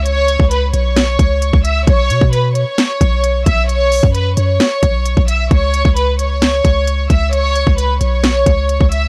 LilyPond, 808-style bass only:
\new Staff \with { instrumentName = "808-style bass" } { \clef bass \time 4/4 \key b \mixolydian \tempo 4 = 132 cis,8. cis,8. b,,4 cis,8. cis,8. | b,,8 b,16 b,4 r8. b,,4 b,,8~ | b,,8. fis,8. fis,8 r8 b,,8. b,,8. | cis,8. cis,4.~ cis,16 cis,4 cis,8~ |
cis,8. cis,8. b,,4 cis,8. cis,8. | }